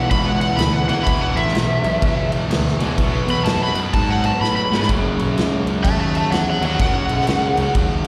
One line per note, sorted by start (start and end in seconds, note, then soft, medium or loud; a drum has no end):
0.00 0.86 E2 medium
0.00 0.87 B2 medium
0.00 0.87 E3 medium
0.00 0.54 B3 medium
0.00 0.10 F#5 loud
0.11 0.49 C#2 medium
0.11 0.27 B5 loud
0.11 kick loud
0.11 crash medium
0.26 0.40 F#5 medium
0.41 0.58 F#5 medium
0.41 crash medium
0.57 0.82 D2 loud
0.57 0.73 B5 loud
0.57 snare loud
0.57 crash medium
0.73 0.87 F#5 medium
0.88 1.03 C#2 medium
0.88 1.05 E2 medium
0.88 1.06 B2 medium
0.88 1.06 E3 medium
0.88 1.05 F#5 loud
0.88 crash medium
1.03 1.31 E1 medium
1.03 2.78 E2 medium
1.03 1.21 B5 loud
1.03 kick loud
1.03 crash medium
1.08 2.79 B2 loud
1.08 2.78 E3 loud
1.21 1.38 F#5 loud
1.35 1.50 A1 medium
1.35 2.31 E5 loud
1.35 crash medium
1.48 snare soft
1.54 1.78 B1 medium
1.54 snare loud
1.54 crash medium
1.84 1.98 B1 medium
1.84 crash medium
2.02 2.40 C#2 loud
2.02 kick loud
2.02 crash medium
2.32 crash medium
2.50 2.74 D2 loud
2.50 snare loud
2.50 crash medium
2.68 snare soft
2.79 2.98 C#2 medium
2.79 2.98 E2 medium
2.79 2.96 B2 medium
2.79 2.97 E3 medium
2.79 crash medium
2.98 3.22 B1 medium
2.98 4.69 B2 medium
2.98 4.73 F#3 medium
2.98 4.70 B3 medium
2.98 kick loud
2.98 crash medium
3.27 3.42 E2 medium
3.27 3.44 B5 loud
3.27 crash medium
3.45 3.70 F#2 medium
3.45 3.61 A5 loud
3.45 snare loud
3.45 crash medium
3.64 3.78 B5 loud
3.75 3.90 F#2 medium
3.75 crash medium
3.93 4.32 G#2 medium
3.93 4.10 A5 loud
3.93 kick loud
3.93 crash medium
4.10 4.26 F#5 loud
4.24 4.41 A5 loud
4.24 crash medium
4.41 4.65 A2 loud
4.41 4.55 B5 loud
4.41 snare medium
4.56 4.88 B5 loud
4.71 4.86 G#2 medium
4.71 4.90 B2 medium
4.71 4.92 F#3 medium
4.71 4.88 B3 medium
4.71 snare medium
4.83 snare medium
4.89 5.13 F#1 loud
4.89 6.60 F#2 medium
4.89 6.61 C#3 medium
4.89 6.60 F#3 loud
4.89 kick loud
4.89 crash medium
5.19 5.34 B1 medium
5.19 crash medium
5.38 5.61 C#2 loud
5.38 snare loud
5.38 crash medium
5.66 5.81 C#2 medium
5.66 crash medium
5.84 6.23 D#2 medium
5.84 5.99 E5 loud
5.84 6.00 A5 loud
5.84 kick loud
5.84 crash medium
6.00 6.15 E5 medium
6.00 6.16 A5 loud
6.15 6.32 E5 medium
6.15 6.32 A5 loud
6.15 crash medium
6.31 6.56 E2 medium
6.31 6.46 C#5 medium
6.31 6.48 F#5 loud
6.31 snare loud
6.31 crash medium
6.50 6.64 C#5 medium
6.50 6.64 F#5 loud
6.61 6.76 D#2 medium
6.61 6.78 F#2 medium
6.61 6.80 C#3 medium
6.61 6.79 F#3 medium
6.61 6.79 C#5 medium
6.61 crash medium
6.66 6.80 F#5 loud
6.79 7.03 F#1 loud
6.79 8.07 F#2 medium
6.79 8.07 C#3 medium
6.79 8.07 F#3 loud
6.79 7.73 F#5 loud
6.79 kick loud
6.79 crash medium
7.09 7.24 B1 medium
7.09 crash medium
7.20 snare soft
7.27 7.51 C#2 medium
7.27 snare loud
7.27 crash medium
7.57 7.72 C#2 medium
7.57 crash medium
7.75 8.07 D#2 loud
7.75 kick loud
7.75 crash medium